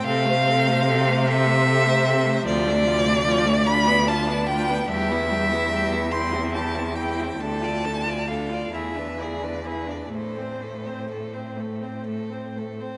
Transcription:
<<
  \new Staff \with { instrumentName = "Violin" } { \time 6/8 \key a \minor \tempo 4. = 48 f''4. e''4. | d''4. b''8 a''8 g''8 | e''4. c'''8 a''8 g''8 | a''4 f''8 e''8 d''8 b'16 d''16 |
c''4. r4. | }
  \new Staff \with { instrumentName = "Violin" } { \time 6/8 \key a \minor a'16 c''16 a'16 c''16 a'16 c''16 a'16 c''16 a'16 c''16 a'16 c''16 | f'16 d'16 f'16 d'16 f'16 d'16 f'16 d'16 f'16 d'16 f'16 d'16 | g'16 e'16 g'16 e'16 g'16 e'16 g'16 e'16 g'16 e'16 g'16 e'16 | a'16 d''16 a'16 d''16 a'16 d''16 gis'16 b'16 gis'16 b'16 gis'16 b'16 |
a'16 c''16 a'16 c''16 a'16 c''16 a'16 c''16 a'16 c''16 a'16 c''16 | }
  \new Staff \with { instrumentName = "Viola" } { \time 6/8 \key a \minor c'16 a16 c'16 a16 c'16 a16 c'16 a16 c'16 a16 c'16 a16 | f16 a16 f16 a16 f16 a16 d'16 b16 d'16 b16 d'16 b16 | g16 b16 g16 b16 g16 b16 e'16 c'16 e'16 c'16 e'16 c'16 | d'16 f'16 d'16 f'16 d'16 f'16 e'16 d'16 e'16 d'16 e'16 d'16 |
a16 c'16 a16 c'16 a16 c'16 a16 c'16 a16 c'16 a16 c'16 | }
  \new Staff \with { instrumentName = "Cello" } { \clef bass \time 6/8 \key a \minor c2. | d,2. | e,2. | d,4. e,4. |
a,2~ a,8. r16 | }
>>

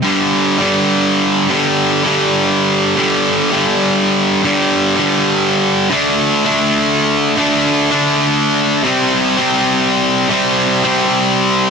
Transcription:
\new Staff \with { instrumentName = "Distorted electric guitar" } { \clef bass \time 4/4 \key d \mixolydian \tempo 4 = 164 <g, d g>4. <g, d g>2~ <g, d g>8 | <g, d g>4. <g, d g>2~ <g, d g>8 | <g, d g>4. <g, d g>2~ <g, d g>8 | <g, d g>4. <g, d g>2~ <g, d g>8 |
<d a d'>4. <d a d'>2~ <d a d'>8 | <d a d'>4. <d a d'>2~ <d a d'>8 | <c g c'>4. <c g c'>2~ <c g c'>8 | <c g c'>4. <c g c'>2~ <c g c'>8 | }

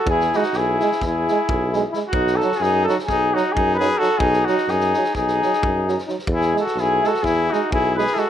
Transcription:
<<
  \new Staff \with { instrumentName = "Flugelhorn" } { \time 9/8 \key e \major \tempo 4. = 87 gis'8 fis'8 gis'4 gis'2 r8 | fis'8 a'8 gis'8 a'8 gis'8 fis'8 gis'8 b'8 a'8 | gis'8 fis'8 gis'4 gis'2 r8 | gis'8 a'8 gis'8 a'8 gis'8 fis'8 gis'8 b'8 a'8 | }
  \new Staff \with { instrumentName = "Trumpet" } { \time 9/8 \key e \major e'8 dis'8 e'4 e'2 r8 | dis'8 fis'8 dis'8 fis'8 dis'8 dis'8 dis'8 gis'8 fis'8 | dis'8 dis'8 dis'4 dis'2 r8 | e'8 fis'8 e'8 fis'8 e'8 dis'8 e'8 gis'8 fis'8 | }
  \new Staff \with { instrumentName = "Trombone" } { \time 9/8 \key e \major r8 e'8 r8 e'8 r8 e'8 r8 e'8 e'8 | r8 dis'8 r8 dis'8 r8 dis'8 r8 dis'8 dis'8 | r8 dis'8 r8 dis'8 r8 dis'8 r8 dis'8 dis'8 | r8 e'8 r8 e'8 r8 e'8 r8 e'8 e'8 | }
  \new Staff \with { instrumentName = "Euphonium" } { \clef bass \time 9/8 \key e \major r8 gis8 r8 gis8 r8 gis8 r8 gis8 gis8 | r8 fis8 r8 fis8 r8 fis8 r8 fis8 fis8 | r8 fis8 r8 fis8 r8 fis8 r8 fis8 fis8 | r8 gis8 r8 gis8 r8 gis8 r8 gis8 gis8 | }
  \new Staff \with { instrumentName = "Tuba" } { \clef bass \time 9/8 \key e \major e,4 b,,4 e,4 b,,4. | b,,4 fis,4 b,,4 fis,4. | b,,4 fis,4 b,,4 fis,4. | e,4 b,,4 e,4 b,,4. | }
  \new DrumStaff \with { instrumentName = "Drums" } \drummode { \time 9/8 bd16 sn16 sn16 sn16 sn8 sn16 sn16 <bd sn>8 sn8 bd8 sn8 sn8 | bd16 sn16 sn16 sn16 sn8 sn16 sn16 <bd sn>8 sn8 bd8 sn8 sn8 | bd16 sn16 sn16 sn16 sn16 sn16 sn16 sn16 <bd sn>16 sn16 sn16 sn16 bd8 sn16 sn16 sn16 sn16 | bd16 sn16 sn16 sn16 sn8 sn16 sn16 <bd sn>8 sn8 bd8 sn16 sn16 sn8 | }
>>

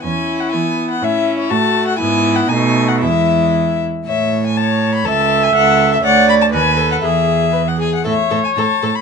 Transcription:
<<
  \new Staff \with { instrumentName = "Violin" } { \time 2/4 \key e \major \tempo 4 = 120 gis''8. fis''16 gis''8. fis''16 | e''8. cis''16 a''8. fis''16 | gis''8. fis''16 gis''8. fis''16 | e''4. r8 |
\key a \major e''8. gis''16 a''8. b''16 | a''8. gis''16 fis''8. e''16 | fis''8 b''16 a''16 gis''8. fis''16 | e''4~ e''16 fis''16 gis''16 fis''16 |
e''8. gis''16 a''8. b''16 | }
  \new Staff \with { instrumentName = "Violin" } { \time 2/4 \key e \major e'2 | e'4 fis'4 | e'4 dis'4 | e'4. r8 |
\key a \major cis''4 cis''4 | a'4 a'4 | cis''4 b'8 a'8 | gis'4 b'8 gis'8 |
a'8 a'8 a'8 a'8 | }
  \new Staff \with { instrumentName = "Viola" } { \time 2/4 \key e \major cis'4 b4 | cis'4 a4 | b4 a4 | gis4. r8 |
\key a \major r4 cis''4 | e''2 | d''4 b'4 | gis'4. r8 |
cis''2 | }
  \new Staff \with { instrumentName = "Cello" } { \clef bass \time 2/4 \key e \major e,4 e4 | a,4 a,4 | gis,4 b,4 | e,4. r8 |
\key a \major a,2 | cis,4 cis,4 | d,4 dis,4 | e,4. r8 |
a,8 a,8 a,8 a,8 | }
>>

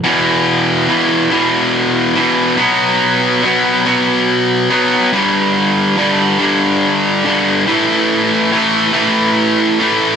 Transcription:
\new Staff \with { instrumentName = "Distorted electric guitar" } { \clef bass \time 6/8 \key e \minor \tempo 4. = 47 <e, b, e>4 <e, b, e>8 <e, b, e>4 <e, b, e>8 | <b, fis b>4 <b, fis b>8 <b, fis b>4 <b, fis b>8 | <g, d g>4 <g, d g>8 <g, d g>4 <g, d g>8 | <a, e a>4 <a, e a>8 <a, e a>4 <a, e a>8 | }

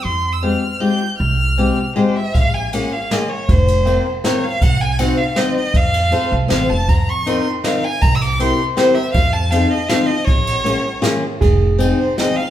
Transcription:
<<
  \new Staff \with { instrumentName = "Violin" } { \time 3/4 \key f \minor \tempo 4 = 158 c'''8. e'''16 f'''4 g'''4 | f'''2 c''8 e''8 | \key bes \minor f''8 aes''8 ges''8 f''8 ees''8 des''8 | c''4. r8 des''8 f''8 |
ges''8 aes''8 ges''8 f''8 ees''8 ees''8 | f''4. r8 f''8 a''8 | bes''8 des'''8 c'''8 r8 f''8 aes''8 | bes''16. e'''32 d'''8 c'''8 r8 c''8 e''8 |
f''8 a''8 f''8 ees''8 f''8 ees''8 | des''2 r4 | r4. c''8 ees''8 f''8 | }
  \new Staff \with { instrumentName = "Hollow-body jazz guitar" } { \time 3/4 \key f \minor r2. | r2. | \key bes \minor r2. | r2. |
r2. | r2. | r2. | r2. |
r2. | r2. | aes'2. | }
  \new Staff \with { instrumentName = "Steel-string acoustic guitar" } { \time 3/4 \key f \minor r4 <aes c' f' g'>8 r8 <aes c' f' g'>8 r8 | r4 <aes c' f' g'>8 r8 <aes c' f' g'>8 r8 | \key bes \minor r4 <bes des' f' aes'>8 r8 <bes des' f' aes'>8 r8 | r4 <bes c' f' bes'>8 r8 <bes c' f' bes'>8 r8 |
r4 <c' ees' ges' c''>8 r8 <c' ees' ges' c''>8 r8 | r4 <c' f' a' c''>8 r8 <c' f' a' c''>8 r8 | r4 <c' ees' f' bes'>8 r8 <c' ees' f' bes'>8 r8 | r4 <c' e' g' bes'>8 r8 <c' e' g' bes'>8 r8 |
r4 <c' ees' f' a'>8 r8 <c' ees' f' a'>8 r8 | r4 <bes des' f' aes'>8 r8 <bes des' f' aes'>8 r8 | r4 <c' ees' f' aes'>8 r8 <c' ees' f' aes'>8 r8 | }
  \new Staff \with { instrumentName = "Upright bass" } { \clef bass \time 3/4 \key f \minor f,2 r4 | c,2 r4 | \key bes \minor bes,,2 r4 | f,,2 r4 |
c,2 r4 | f,4. c,8 a,,8 f,,8 | f,2 r4 | c,2 r4 |
f,2 r4 | bes,,2 r4 | f,,2 r4 | }
  \new DrumStaff \with { instrumentName = "Drums" } \drummode { \time 3/4 r4 r4 r4 | r4 r4 r4 | <bd cymr>4 cymr4 <cymr sn>4 | <bd cymr>8 cymr8 cymr4 <cymr sn>4 |
<bd cymr>4 cymr4 <cymr sn>4 | <bd cymr>8 cymr8 cymr4 <cymr sn>4 | <bd cymr>4 cymr4 <cymr sn>4 | <bd cymr>8 cymr8 cymr4 <cymr sn>4 |
<bd cymr>4 cymr4 <cymr sn>4 | <bd cymr>8 cymr8 cymr4 <cymr sn>4 | <bd cymr>4 cymr4 <cymr sn>4 | }
>>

